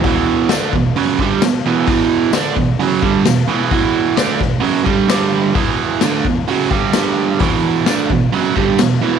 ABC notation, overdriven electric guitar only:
X:1
M:4/4
L:1/8
Q:1/4=130
K:Em
V:1 name="Overdriven electric guitar" clef=bass
[E,,B,,E,]2 [D,A,D] [E,,B,,] [F,,^C,F,] [G,,D,G,] [E,,B,,] [E,,B,,E,] | [E,,B,,E,]2 [D,A,D] [E,,B,,] [F,,^C,F,] [G,,D,G,] [E,,B,,] [E,,B,,E,] | [E,,B,,E,]2 [D,A,D] [E,,B,,] [F,,^C,F,] [G,,D,G,] [G,,D,G,]2 | [E,,B,,E,]2 [D,A,D] [E,,B,,] [F,,^C,F,] [G,,D,G,] [G,,D,G,]2 |
[E,,B,,E,]2 [D,A,D] [E,,B,,] [F,,^C,F,] [G,,D,G,] [E,,B,,] [E,,B,,E,] |]